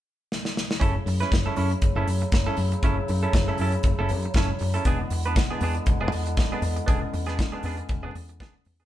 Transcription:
0.32 snare
0.45 snare
0.57 snare
0.71 snare
0.80 F#1 C#3 F#3 A3 C#4 E4 A4, kick, closed hi-hat
0.95 muted clean electric guitar stroke
1.06 F#2, muted clean electric guitar stroke, open hi-hat
1.20 C#4 E4 B4, snare, closed hi-hat
1.32 F#1, muted clean electric guitar stroke, kick, snare, closed hi-hat
1.46 C#4 E4 A4
1.56 F#2 C#4 E4 A4, open hi-hat
1.70 muted clean electric guitar stroke, closed hi-hat
1.82 F#1, muted clean electric guitar stroke, kick, closed hi-hat
1.95 F#1 C#4 E4 A4
2.07 F#2, muted clean electric guitar stroke, open hi-hat
2.21 muted clean electric guitar stroke, closed hi-hat
2.32 F#1, muted clean electric guitar stroke, kick, snare, closed hi-hat
2.47 C#4 E4 A4
2.57 F#2, muted clean electric guitar stroke, open hi-hat
2.72 muted clean electric guitar stroke, closed hi-hat
2.83 F#1 C#4 E4 A4, kick, closed hi-hat
2.97 muted clean electric guitar stroke
3.08 F#2, muted clean electric guitar stroke, open hi-hat
3.21 C#4 E4 A4, closed hi-hat
3.33 F#1, muted clean electric guitar stroke, kick, snare, closed hi-hat
3.48 C#4 E4 A4
3.58 F#2 C#4 E4 A4, open hi-hat
3.72 muted clean electric guitar stroke, closed hi-hat
3.83 F#1, muted clean electric guitar stroke, kick, closed hi-hat
3.99 F#1 C#4 E4 A4
4.09 F#2, muted clean electric guitar stroke, open hi-hat
4.22 muted clean electric guitar stroke, closed hi-hat
4.34 F#1 C#4 E4 A4, kick, snare, closed hi-hat
4.50 muted clean electric guitar stroke
4.59 F#2, muted clean electric guitar stroke, open hi-hat
4.74 C#4 E4 A4, closed hi-hat
4.84 E1 D3 G#3 B3 D4 E4 G#4, kick, closed hi-hat
5.00 muted clean electric guitar stroke
5.10 E2, muted clean electric guitar stroke, open hi-hat
5.23 D4 B4, closed hi-hat
5.27 B3
5.36 E1, muted clean electric guitar stroke, kick, snare, closed hi-hat
5.50 B3 D4 G#4
5.61 E2 B3 D4 G#4, open hi-hat
5.74 muted clean electric guitar stroke, closed hi-hat
5.86 E1, muted clean electric guitar stroke, kick, closed hi-hat
6.00 E1 B3 D4 G#4
6.11 E2, muted clean electric guitar stroke, open hi-hat
6.26 muted clean electric guitar stroke, closed hi-hat
6.37 E1, muted clean electric guitar stroke, kick, snare, closed hi-hat
6.52 B3 D4 G#4
6.62 E2, muted clean electric guitar stroke, open hi-hat
6.76 muted clean electric guitar stroke, closed hi-hat
6.86 E1 B3 C#4 D4 G#4, kick, closed hi-hat
7.01 muted clean electric guitar stroke
7.13 E2, muted clean electric guitar stroke, open hi-hat
7.26 B3 D4 G#4, snare, closed hi-hat
7.39 E1, muted clean electric guitar stroke, kick, snare, closed hi-hat
7.52 B3 D4 G#4
7.63 E2 B3 D4 G#4, open hi-hat
7.77 muted clean electric guitar stroke, closed hi-hat
7.89 E1, muted clean electric guitar stroke, kick, closed hi-hat
8.02 E1 B3 D4 G#4
8.15 E2, muted clean electric guitar stroke, open hi-hat
8.28 muted clean electric guitar stroke, closed hi-hat
8.40 E1 B3 D4 G#4, kick, snare, closed hi-hat
8.55 muted clean electric guitar stroke
8.65 E2, muted clean electric guitar stroke, open hi-hat
8.79 B3 D4 G#4, closed hi-hat

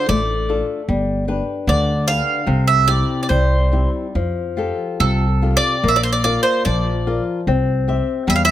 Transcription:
Already playing: D4 F4 A4
0.09 A1 A3 D5
0.49 D4 F4 A4
0.88 G1 G3
1.28 D4 G4 B4
1.67 D2 D3 D5
2.07 D4 G4 B4 F5
2.47 C2 C3
2.68 E5
2.88 C4 E4 G4 D5
3.23 D5
3.29 C2 G3 C5
3.72 C4 E4 G4
4.15 F2 F3
4.57 F4 G4 A4
5.00 C2 C3 A4
5.42 F4 G4 A4
5.57 D5
5.83 A#1 A#3
5.88 E5
5.96 D5
6.03 C5
6.13 D5
6.24 F4 A#4 D5
6.43 C5
6.65 A#1 F3 D5
7.07 F4 A#4 D5
7.47 C2 C4
7.88 G4 C5 E5
8.27 E2 G3 E5
8.36 F5
8.45 E5

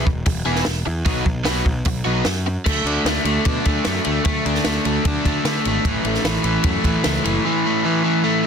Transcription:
0.05 E1, muted overdriven electric guitar stroke, kick
0.26 E1, muted overdriven electric guitar stroke, kick, open hi-hat
0.45 E1 E3 B3 E4 G#4
0.56 snare
0.65 E1, muted overdriven electric guitar stroke, snare, open hi-hat
0.86 E2, muted overdriven electric guitar stroke
1.05 B1 F#3 B3 D#4 F#4, kick, open hi-hat
1.25 B1, muted overdriven electric guitar stroke, kick
1.45 B1 F#3 B3 D#4 F#4, snare, open hi-hat
1.65 B1, muted overdriven electric guitar stroke, kick
1.85 B1, muted overdriven electric guitar stroke, kick, open hi-hat
2.05 B1 F#3 B3 D#4 F#4
2.25 F#2, muted overdriven electric guitar stroke, snare, open hi-hat
2.47 muted overdriven electric guitar stroke
2.66 D2 A3, kick, crash
2.84 D2 D4, ride
3.05 D2 A3, snare, ride
3.25 D2 A3, ride
3.45 B2 D4, kick, ride
3.65 D2 A3, kick, ride
3.85 F#2 A3, snare, ride
4.04 D2 A3, ride
4.25 D2 A3, kick, ride
4.45 D2 D4, ride
4.55 snare
4.65 D2 A3, snare, ride
4.85 D2 A3, ride
5.05 D2 D4, kick, ride
5.24 D2 A3, kick, ride
5.44 D3 A3, snare, ride
5.65 G#1 A3, ride
5.85 A1 E3, kick, ride
6.05 A1 A3, ride
6.15 snare
6.24 A1 E3, snare, ride
6.44 A1 E3, ride
6.64 F#2 A3, kick, ride
6.84 A1 E3, kick, ride
7.04 C#2 E3, snare, ride
7.24 F#1 E3, ride
7.46 E3
7.66 A3
7.85 E3
8.05 E3
8.24 A3

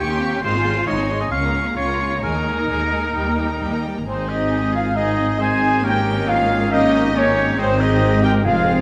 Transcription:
0.00 D#2 G4 G5 C#6
0.09 C#4 D#4 C6
0.20 C4 F4 C#6
0.31 C#4 D#4 C6
0.42 G#1 G#3 D#4 F4 C5 C6
0.54 C4 G#4 G#5
0.63 G#3 D#4 C6
0.74 C4 G#4 G#5
0.85 G#1 G#3 D#4 C#5 C6
0.96 C4 G#4 G#5
1.08 G#3 D#4 C6
1.19 C4 G#4 D#5 G#5
1.29 C#2 C#4 F4 F5 C#6
1.41 A#3 C#4 A#5
1.52 C#4 F4 C#6
1.64 A#3 C#4 A#5
1.77 C#2 C#4 F4 C#5 C#6
1.88 A#3 C#4 A#5
1.99 C#4 F4 C#6
2.11 A#3 C#4 A#5
2.22 D#2 G#3 D#4 G#4 A#4 G#5
2.34 A#3 A#4 A#5
2.46 G#3 G#4 G#5
2.58 A#3 A#4 A#5
2.69 D#2 G#3 G#4 G#5
2.82 A#3 A#4 A#5
2.92 G#3 G#4 G#5
3.03 A#3 A#4 A#5
3.15 D#2 G3 G4 G5
3.27 A#3 A#4 A#5
3.38 G3 G4 G5
3.50 A#3 A#4 A#5
3.61 D#2 G3 G4 G5
3.73 A#3 A#4 A#5
3.84 G3 G4 G5
3.95 A#3 A#4 A#5
4.06 G#1 G#2 D#3 C4 D#4 G#4 C5
4.27 D#4 G4 D#5
4.72 F4 G#4 F5
4.94 D#3 C4 D#4 G#4 D#5
5.39 D#3 C4 D#4 G#4 C5 G#5
5.83 D#3 A#3 C#4 D#4 G4 A#4 G5
6.28 F4 G#4 F5
6.71 D#3 A#3 C#4 D#4 G4 D#5
7.13 D#3 A#3 C#4 D#4 G4 C#5
7.57 G#1 G#2 D#3 G#3 C4 D#4 C5
7.77 D#4 G4 D#5
8.21 G4 A#4 G5
8.43 F1 F2 G#3 C4 F4 G#4 F5

